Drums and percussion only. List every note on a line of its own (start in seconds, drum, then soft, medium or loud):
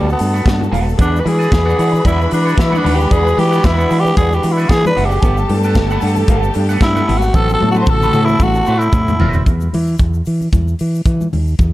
0.09 shaker medium
0.19 open hi-hat medium
0.19 shaker medium
0.36 shaker medium
0.46 kick loud
0.46 snare loud
0.46 closed hi-hat medium
0.46 muted conga soft
0.46 shaker medium
0.61 muted conga soft
0.61 high conga medium
0.61 shaker soft
0.73 open hi-hat medium
0.73 high conga medium
0.73 low conga medium
0.73 shaker soft
0.89 shaker medium
0.99 kick loud
0.99 closed hi-hat medium
0.99 muted conga soft
0.99 low conga medium
0.99 shaker medium
1.16 shaker medium
1.26 open hi-hat medium
1.26 high conga medium
1.42 shaker medium
1.52 kick loud
1.52 snare loud
1.52 closed hi-hat medium
1.52 shaker medium
1.69 shaker medium
1.79 open hi-hat medium
1.79 shaker medium
1.93 low conga medium
1.93 shaker medium
2.05 kick loud
2.05 closed hi-hat medium
2.05 muted conga soft
2.05 high conga medium
2.05 shaker medium
2.20 muted conga soft
2.20 shaker soft
2.31 open hi-hat medium
2.31 shaker medium
2.48 shaker medium
2.58 kick loud
2.58 snare loud
2.58 closed hi-hat medium
2.58 shaker medium
2.73 high conga medium
2.73 shaker soft
2.85 open hi-hat medium
2.85 high conga medium
2.85 low conga medium
3.00 shaker medium
3.11 kick loud
3.11 closed hi-hat medium
3.11 low conga medium
3.11 shaker medium
3.27 muted conga soft
3.27 shaker medium
3.38 open hi-hat medium
3.38 high conga medium
3.53 shaker medium
3.64 kick loud
3.64 snare loud
3.64 closed hi-hat medium
3.64 shaker medium
3.80 shaker medium
3.90 open hi-hat medium
3.90 shaker medium
4.05 low conga medium
4.05 shaker medium
4.17 kick loud
4.17 closed hi-hat medium
4.17 high conga medium
4.17 shaker medium
4.32 muted conga soft
4.32 shaker soft
4.43 open hi-hat medium
4.43 shaker medium
4.58 shaker medium
4.69 kick loud
4.69 snare loud
4.69 closed hi-hat medium
4.69 shaker medium
4.85 muted conga soft
4.85 high conga medium
4.85 shaker medium
4.97 open hi-hat medium
4.97 high conga medium
4.97 low conga medium
5.11 shaker medium
5.22 kick loud
5.22 closed hi-hat medium
5.22 muted conga soft
5.22 low conga medium
5.22 shaker medium
5.37 shaker medium
5.49 open hi-hat medium
5.49 high conga medium
5.63 shaker medium
5.75 kick loud
5.75 snare loud
5.75 closed hi-hat medium
5.75 muted conga soft
5.75 shaker medium
5.90 shaker medium
6.01 open hi-hat medium
6.01 shaker medium
6.16 low conga medium
6.16 shaker medium
6.28 kick loud
6.28 closed hi-hat medium
6.28 muted conga soft
6.28 high conga medium
6.28 shaker medium
6.43 shaker soft
6.54 open hi-hat medium
6.54 shaker medium
6.69 shaker medium
6.81 kick loud
6.81 snare loud
6.81 closed hi-hat medium
6.81 muted conga soft
6.81 shaker medium
6.96 muted conga soft
6.96 high conga medium
6.96 shaker medium
7.09 open hi-hat medium
7.09 high conga medium
7.09 low conga medium
7.22 shaker medium
7.34 kick loud
7.34 high tom medium
7.34 low conga medium
7.34 shaker medium
7.49 shaker medium
7.60 high tom medium
7.60 high conga medium
7.75 high tom medium
7.75 shaker medium
7.86 kick loud
7.86 mid tom medium
7.86 shaker medium
8.02 mid tom medium
8.02 muted conga soft
8.02 shaker medium
8.13 mid tom medium
8.13 shaker medium
8.28 low conga medium
8.28 shaker medium
8.40 kick loud
8.40 high conga medium
8.40 shaker medium
8.55 muted conga soft
8.55 shaker soft
8.66 shaker medium
8.81 shaker medium
8.93 kick loud
8.93 floor tom loud
8.93 muted conga soft
8.93 shaker medium
9.08 floor tom medium
9.08 muted conga soft
9.08 high conga medium
9.08 shaker medium
9.20 floor tom loud
9.20 high conga medium
9.20 low conga medium
9.33 floor tom medium
9.33 shaker medium
9.46 kick medium
9.46 closed hi-hat medium
9.46 muted conga soft
9.46 low conga medium
9.46 shaker medium
9.61 muted conga soft
9.61 shaker medium
9.73 open hi-hat medium
9.73 high conga medium
9.87 shaker soft
9.98 kick loud
9.98 closed hi-hat medium
9.98 muted conga soft
9.98 shaker medium
10.14 shaker medium
10.25 open hi-hat medium
10.25 shaker medium
10.41 low conga medium
10.41 shaker medium
10.53 kick loud
10.53 closed hi-hat medium
10.53 muted conga soft
10.53 high conga medium
10.53 shaker medium
10.68 shaker soft
10.79 open hi-hat medium
10.79 shaker medium
10.95 shaker medium
11.06 kick loud
11.06 closed hi-hat medium
11.06 muted conga soft
11.06 shaker medium
11.21 muted conga soft
11.21 high conga medium
11.21 shaker soft
11.33 open hi-hat soft
11.33 high conga medium
11.33 low conga medium
11.47 shaker medium
11.59 kick medium
11.59 closed hi-hat medium
11.59 low conga medium
11.59 shaker medium